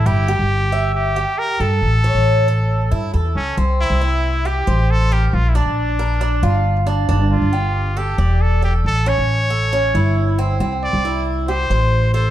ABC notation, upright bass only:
X:1
M:4/4
L:1/16
Q:1/4=136
K:Cmix
V:1 name="Upright bass" clef=bass
G,,,3 G,,,8 z3 G,,2 | A,,,3 A,,,6- A,,, G,,2 E,,2 ^C,,2 | C,,3 C,,6- C,, A,,,6 | B,,,3 B,,,6- B,,, G,,,6 |
G,,,3 G,,,6- G,,, E,,,6 | A,,,3 A,,,6- A,,, G,,,6 | C,,3 C,,6- C,, A,,,6 |]